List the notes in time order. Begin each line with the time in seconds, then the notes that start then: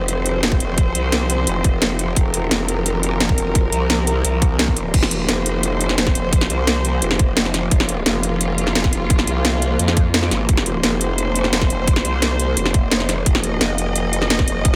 Already playing: F1 F3 C4 C5
0.08 closed hi-hat
0.26 closed hi-hat
0.43 snare, closed hi-hat
0.52 kick
0.60 F1, closed hi-hat
0.78 kick, closed hi-hat
0.95 C2, closed hi-hat
1.12 snare, closed hi-hat
1.30 closed hi-hat
1.47 F1, closed hi-hat
1.64 F1, kick, closed hi-hat
1.82 snare, closed hi-hat
1.99 closed hi-hat
2.16 F1 A#4, kick, closed hi-hat
2.34 closed hi-hat
2.51 F1, snare, closed hi-hat
2.68 closed hi-hat
2.86 closed hi-hat
3.03 closed hi-hat
3.20 snare, closed hi-hat
3.29 kick
3.38 F1, closed hi-hat
3.55 kick, closed hi-hat
3.72 C2, closed hi-hat
3.90 snare, closed hi-hat
4.07 closed hi-hat
4.24 C2, closed hi-hat
4.42 kick, closed hi-hat
4.59 snare, closed hi-hat
4.68 kick
4.77 closed hi-hat
4.94 F1 A#3 C5, kick, closed hi-hat, crash
5.03 snare
5.11 closed hi-hat
5.29 F1, snare, closed hi-hat
5.46 closed hi-hat
5.63 closed hi-hat
5.81 closed hi-hat
5.89 snare
5.98 snare, closed hi-hat
6.07 kick, snare
6.15 F1, closed hi-hat
6.33 kick, closed hi-hat
6.41 snare
6.50 C2, closed hi-hat
6.67 snare, closed hi-hat
6.85 closed hi-hat
7.02 F1, closed hi-hat
7.11 snare
7.19 F1, kick, closed hi-hat
7.37 snare, closed hi-hat
7.45 snare
7.54 snare, closed hi-hat
7.71 F1 F4, kick, closed hi-hat
7.80 snare
7.89 closed hi-hat
8.06 F1, snare, closed hi-hat
8.23 closed hi-hat
8.41 closed hi-hat
8.58 closed hi-hat
8.67 snare
8.75 snare, closed hi-hat
8.84 kick, snare
8.93 F1, closed hi-hat
9.10 kick, closed hi-hat
9.19 snare
9.27 C2, closed hi-hat
9.45 snare, closed hi-hat
9.62 closed hi-hat
9.79 F2, closed hi-hat
9.88 snare
9.97 kick, closed hi-hat
10.14 snare, closed hi-hat
10.23 snare
10.31 G#1, snare, closed hi-hat
10.49 F1 C5, kick, closed hi-hat
10.57 snare
10.66 closed hi-hat
10.83 F1, snare, closed hi-hat
11.01 closed hi-hat
11.18 closed hi-hat
11.36 closed hi-hat
11.44 snare
11.53 snare, closed hi-hat
11.62 kick, snare
11.70 F1, closed hi-hat
11.88 kick, closed hi-hat
11.96 snare
12.05 C2, closed hi-hat
12.22 snare, closed hi-hat
12.40 closed hi-hat
12.57 F1, closed hi-hat
12.66 snare
12.74 F1, kick, closed hi-hat
12.92 snare, closed hi-hat
13.00 snare
13.09 snare, closed hi-hat
13.26 F1 D#5, kick, closed hi-hat
13.35 snare
13.44 closed hi-hat
13.61 F1, snare, closed hi-hat
13.78 closed hi-hat
13.96 closed hi-hat
14.13 closed hi-hat
14.22 snare
14.30 snare, closed hi-hat
14.39 kick, snare
14.48 F1, closed hi-hat
14.65 kick, closed hi-hat